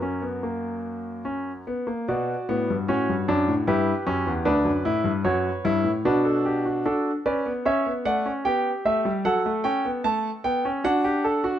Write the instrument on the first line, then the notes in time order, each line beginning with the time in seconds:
grand piano
Already playing: F#2 F#4 A#4
0.02 C#4
0.22 B3
0.43 A#3
1.25 C#4
1.67 B3
1.87 A#3
2.08 B2 B3 F#4 D5
2.49 A2 B3
2.70 G2
2.88 A2 C#4 F#4 C#5
3.09 G2
3.28 F#2 D4
3.48 A2
3.67 G2 E4 G4 B4
4.07 F#2 C#4
4.27 E2
4.45 D2 D4 B4 D5
4.65 F#2
4.85 A2 E4
5.04 G2
5.24 F#2 F#4 C#5
5.65 G2 E4
5.84 A2
6.05 B2 D4 F#4 B4
6.25 A4
6.46 G4
6.65 F#4
6.85 D4 F#4 A4
7.26 C#4 B4 D5
7.46 B3
7.65 C#4 C#5 E5
7.86 B3
8.05 A3 D5 F#5
8.26 C#4
8.45 B3 G4 G5
8.85 A3 E5
9.05 G3
9.25 F#3 A4 F#5
9.46 A3
9.64 C#4 G5
9.85 B3
10.04 A3 A5
10.44 B3 G5
10.65 C#4
10.84 D4 F#4 F#5
11.04 G4
11.24 A4
11.44 F#4